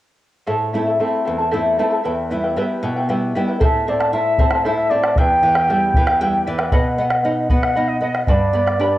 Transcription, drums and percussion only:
0, 0, Header, 1, 2, 480
1, 0, Start_track
1, 0, Tempo, 519931
1, 441, Time_signature, 6, 3, 24, 8
1, 8293, End_track
2, 0, Start_track
2, 0, Title_t, "Bombo"
2, 3332, Note_on_c, 9, 43, 67
2, 3424, Note_off_c, 9, 43, 0
2, 3697, Note_on_c, 9, 37, 47
2, 3790, Note_off_c, 9, 37, 0
2, 3819, Note_on_c, 9, 37, 21
2, 3911, Note_off_c, 9, 37, 0
2, 4047, Note_on_c, 9, 43, 65
2, 4140, Note_off_c, 9, 43, 0
2, 4161, Note_on_c, 9, 37, 48
2, 4254, Note_off_c, 9, 37, 0
2, 4410, Note_on_c, 9, 37, 20
2, 4503, Note_off_c, 9, 37, 0
2, 4649, Note_on_c, 9, 37, 51
2, 4742, Note_off_c, 9, 37, 0
2, 4763, Note_on_c, 9, 43, 70
2, 4855, Note_off_c, 9, 43, 0
2, 5127, Note_on_c, 9, 37, 54
2, 5219, Note_off_c, 9, 37, 0
2, 5246, Note_on_c, 9, 37, 21
2, 5338, Note_off_c, 9, 37, 0
2, 5482, Note_on_c, 9, 43, 67
2, 5575, Note_off_c, 9, 43, 0
2, 5604, Note_on_c, 9, 37, 51
2, 5696, Note_off_c, 9, 37, 0
2, 5848, Note_on_c, 9, 37, 20
2, 5940, Note_off_c, 9, 37, 0
2, 6081, Note_on_c, 9, 37, 53
2, 6173, Note_off_c, 9, 37, 0
2, 6200, Note_on_c, 9, 43, 67
2, 6293, Note_off_c, 9, 43, 0
2, 6558, Note_on_c, 9, 37, 48
2, 6650, Note_off_c, 9, 37, 0
2, 6683, Note_on_c, 9, 37, 21
2, 6776, Note_off_c, 9, 37, 0
2, 6919, Note_on_c, 9, 43, 63
2, 7012, Note_off_c, 9, 43, 0
2, 7046, Note_on_c, 9, 37, 50
2, 7138, Note_off_c, 9, 37, 0
2, 7285, Note_on_c, 9, 37, 18
2, 7378, Note_off_c, 9, 37, 0
2, 7523, Note_on_c, 9, 37, 48
2, 7615, Note_off_c, 9, 37, 0
2, 7639, Note_on_c, 9, 37, 20
2, 7639, Note_on_c, 9, 43, 62
2, 7731, Note_off_c, 9, 37, 0
2, 7731, Note_off_c, 9, 43, 0
2, 7889, Note_on_c, 9, 37, 19
2, 7981, Note_off_c, 9, 37, 0
2, 8011, Note_on_c, 9, 37, 45
2, 8103, Note_off_c, 9, 37, 0
2, 8133, Note_on_c, 9, 37, 20
2, 8226, Note_off_c, 9, 37, 0
2, 8293, End_track
0, 0, End_of_file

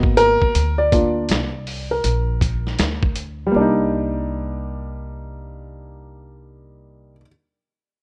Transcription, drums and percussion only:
0, 0, Header, 1, 2, 480
1, 0, Start_track
1, 0, Key_signature, -3, "minor"
1, 0, Tempo, 750000
1, 346, Time_signature, 4, 2, 24, 8
1, 5135, End_track
2, 0, Start_track
2, 0, Title_t, "Drums"
2, 20, Note_on_c, 9, 36, 89
2, 84, Note_off_c, 9, 36, 0
2, 110, Note_on_c, 9, 42, 65
2, 174, Note_off_c, 9, 42, 0
2, 267, Note_on_c, 9, 36, 73
2, 331, Note_off_c, 9, 36, 0
2, 352, Note_on_c, 9, 42, 82
2, 416, Note_off_c, 9, 42, 0
2, 591, Note_on_c, 9, 36, 85
2, 594, Note_on_c, 9, 42, 52
2, 655, Note_off_c, 9, 36, 0
2, 658, Note_off_c, 9, 42, 0
2, 824, Note_on_c, 9, 42, 72
2, 841, Note_on_c, 9, 38, 93
2, 888, Note_off_c, 9, 42, 0
2, 905, Note_off_c, 9, 38, 0
2, 1068, Note_on_c, 9, 46, 46
2, 1132, Note_off_c, 9, 46, 0
2, 1306, Note_on_c, 9, 42, 95
2, 1370, Note_off_c, 9, 42, 0
2, 1545, Note_on_c, 9, 36, 77
2, 1550, Note_on_c, 9, 42, 54
2, 1609, Note_off_c, 9, 36, 0
2, 1614, Note_off_c, 9, 42, 0
2, 1708, Note_on_c, 9, 38, 33
2, 1772, Note_off_c, 9, 38, 0
2, 1783, Note_on_c, 9, 42, 72
2, 1789, Note_on_c, 9, 38, 92
2, 1847, Note_off_c, 9, 42, 0
2, 1853, Note_off_c, 9, 38, 0
2, 1937, Note_on_c, 9, 36, 75
2, 2001, Note_off_c, 9, 36, 0
2, 2020, Note_on_c, 9, 42, 57
2, 2084, Note_off_c, 9, 42, 0
2, 5135, End_track
0, 0, End_of_file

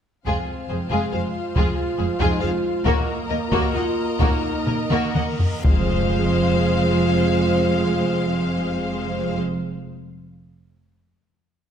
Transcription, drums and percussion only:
0, 0, Header, 1, 2, 480
1, 0, Start_track
1, 0, Tempo, 432900
1, 294, Time_signature, 3, 2, 24, 8
1, 3655, Tempo, 456274
1, 5095, Tempo, 489396
1, 6055, Tempo, 508044
1, 11783, End_track
2, 0, Start_track
2, 0, Title_t, "Taiko and cinematic ensemble drums"
2, 301, Note_on_c, 9, 41, 47
2, 411, Note_off_c, 9, 41, 0
2, 1728, Note_on_c, 9, 41, 68
2, 1839, Note_off_c, 9, 41, 0
2, 2441, Note_on_c, 9, 41, 67
2, 2552, Note_off_c, 9, 41, 0
2, 3164, Note_on_c, 9, 41, 81
2, 3275, Note_off_c, 9, 41, 0
2, 3892, Note_on_c, 9, 41, 78
2, 3997, Note_off_c, 9, 41, 0
2, 4609, Note_on_c, 9, 41, 89
2, 4714, Note_off_c, 9, 41, 0
2, 5098, Note_on_c, 9, 45, 49
2, 5197, Note_off_c, 9, 45, 0
2, 5333, Note_on_c, 9, 47, 73
2, 5432, Note_off_c, 9, 47, 0
2, 5571, Note_on_c, 9, 47, 80
2, 5669, Note_off_c, 9, 47, 0
2, 5810, Note_on_c, 9, 43, 94
2, 5908, Note_off_c, 9, 43, 0
2, 6057, Note_on_c, 9, 41, 93
2, 6152, Note_off_c, 9, 41, 0
2, 11783, End_track
0, 0, End_of_file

